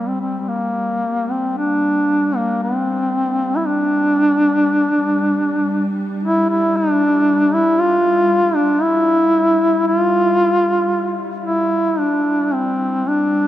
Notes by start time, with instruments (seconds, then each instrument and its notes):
Already playing: cello section G3
0.08 duduk C4
0.21 duduk C4
0.40 duduk C4
0.47 cello section G3, duduk A#3
1.31 duduk C4
1.58 duduk D4
2.36 duduk A#3
2.63 duduk C4
3.57 duduk E4
3.66 duduk D4
6.23 duduk E4
6.50 duduk E4
6.77 duduk D4
7.54 duduk E4
7.80 duduk F4
8.55 duduk D4
8.82 duduk E4
9.88 duduk F4
11.45 duduk E4
11.99 duduk D4
12.54 duduk C4
13.08 cello section G3, duduk D4